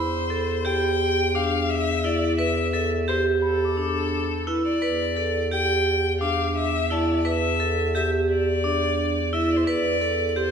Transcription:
Already playing: bass clarinet E2, violin C5, vibraphone B5
0.30 vibraphone A4
0.65 vibraphone G4, violin G5
1.35 vibraphone D4, violin F5
1.70 violin E5
2.04 vibraphone E4, violin D5
2.38 vibraphone B4, violin E5
2.73 vibraphone A4, violin E5
3.08 vibraphone G4, violin C5
3.42 violin A4, celesta B5
3.65 celesta D6
3.77 vibraphone D4
4.47 vibraphone E4, violin B4
4.64 violin D5
4.82 bass clarinet E2, vibraphone B4
5.17 vibraphone A4
5.51 vibraphone G4, violin G5
6.21 vibraphone D4, violin F5
6.57 violin E5
6.90 vibraphone E4, violin D5, celesta A5
7.25 vibraphone B4, violin E5
7.60 vibraphone A4
7.95 vibraphone G4, violin E5
8.29 violin D5
8.64 vibraphone D4
9.33 vibraphone E4, violin E5
9.51 violin D5
9.56 violin C5
9.64 bass clarinet E2, vibraphone B4, violin D5
10.01 vibraphone A4
10.29 violin D5
10.36 vibraphone G4, violin C5

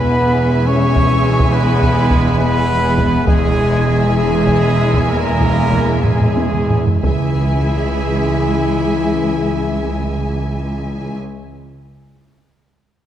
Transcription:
Already playing: double bass section E1, cello section E2, trombone section E3 G#3, string section G#3 E4 E5 G#5, french horn section B3, viola section G#4, trumpet B4, violin section E5 G#5, flute B5
0.67 french horn section C#4, trumpet C#5, flute C#6
0.96 taiko
1.40 taiko
1.52 french horn section B3, trumpet B4, flute B5
1.83 taiko
2.11 taiko
2.39 french horn section B3, trumpet B4, flute B5
2.98 taiko
3.25 double bass section E1, cello section E2, trombone section E3 G#3, french horn section G#3, string section G#3 E4 E5 G#5, viola section G#4, trumpet G#4, violin section E5 G#5, flute G#5, taiko
4.15 french horn section G#3, trumpet G#4, flute G#5
4.47 taiko
4.94 taiko
5.06 french horn section A#3, flute A#5
5.10 trumpet A#4
5.40 taiko
5.72 taiko
6.03 french horn section G#3, trumpet G#4, flute G#5, taiko low-mid
6.21 taiko low-mid
6.37 taiko high
6.54 taiko low-mid
6.70 taiko low-mid
6.87 taiko low
7.02 double bass section C#2, cello section C#2, trombone section E3 G#3, french horn section E3, string section G#3 E4 E5 G#5, trumpet E4, viola section G#4, flute E5, violin section E5 G#5, taiko

